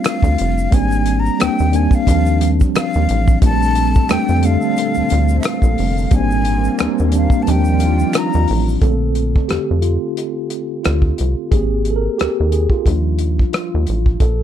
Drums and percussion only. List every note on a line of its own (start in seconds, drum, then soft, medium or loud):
0.04 finger snap medium
0.04 cross-stick loud
0.04 closed hi-hat medium
0.04 shaker medium
0.22 kick medium
0.22 shaker soft
0.38 closed hi-hat medium
0.58 shaker soft
0.72 kick loud
0.72 closed hi-hat medium
0.72 shaker medium
0.91 shaker soft
1.06 closed hi-hat medium
1.06 shaker soft
1.26 shaker soft
1.40 finger snap medium
1.40 cross-stick loud
1.40 closed hi-hat medium
1.40 shaker medium
1.59 shaker soft
1.73 closed hi-hat medium
1.73 shaker soft
1.91 kick medium
1.91 shaker soft
2.07 kick medium
2.07 closed hi-hat medium
2.07 shaker medium
2.26 shaker soft
2.41 closed hi-hat medium
2.41 shaker soft
2.60 kick medium
2.60 shaker soft
2.75 finger snap medium
2.75 cross-stick loud
2.75 closed hi-hat medium
2.75 shaker medium
2.93 shaker soft
3.09 closed hi-hat medium
3.27 kick medium
3.27 shaker soft
3.42 kick loud
3.42 closed hi-hat medium
3.42 shaker medium
3.62 shaker soft
3.75 closed hi-hat medium
3.75 shaker soft
3.95 kick loud
3.95 shaker soft
4.09 finger snap medium
4.09 cross-stick loud
4.09 closed hi-hat medium
4.09 shaker medium
4.28 shaker soft
4.43 closed hi-hat medium
4.43 shaker soft
4.62 shaker soft
4.77 closed hi-hat medium
4.77 shaker medium
4.94 shaker soft
5.09 closed hi-hat medium
5.09 shaker soft
5.28 shaker soft
5.43 finger snap medium
5.43 cross-stick loud
5.43 closed hi-hat medium
5.43 shaker medium
5.62 kick medium
5.62 shaker soft
5.78 open hi-hat soft
5.98 shaker soft
6.11 kick loud
6.11 closed hi-hat medium
6.11 shaker medium
6.31 shaker soft
6.45 closed hi-hat medium
6.45 shaker soft
6.64 shaker soft
6.79 finger snap medium
6.79 cross-stick loud
6.79 closed hi-hat medium
6.79 shaker medium
6.98 shaker soft
7.12 closed hi-hat medium
7.12 shaker soft
7.30 kick medium
7.30 shaker soft
7.47 closed hi-hat medium
7.47 shaker medium
7.65 shaker soft
7.79 closed hi-hat medium
7.79 shaker soft
7.99 shaker soft
8.13 finger snap medium
8.13 cross-stick loud
8.13 closed hi-hat medium
8.13 shaker medium
8.33 shaker soft
8.48 open hi-hat soft
8.68 shaker soft
8.81 kick medium
8.81 closed hi-hat medium
9.15 closed hi-hat medium
9.36 kick medium
9.49 cross-stick medium
9.49 closed hi-hat medium
9.82 closed hi-hat soft
10.17 closed hi-hat medium
10.50 closed hi-hat medium
10.84 cross-stick medium
10.84 closed hi-hat medium
11.02 kick medium
11.18 closed hi-hat medium
11.52 kick medium
11.52 closed hi-hat medium
11.85 closed hi-hat medium
12.19 cross-stick medium
12.19 closed hi-hat medium
12.52 closed hi-hat medium
12.70 kick medium
12.86 kick medium
12.86 closed hi-hat medium
13.19 closed hi-hat medium
13.39 kick medium
13.53 cross-stick loud
13.53 closed hi-hat medium
13.87 closed hi-hat medium
14.06 kick medium
14.20 kick medium
14.20 closed hi-hat medium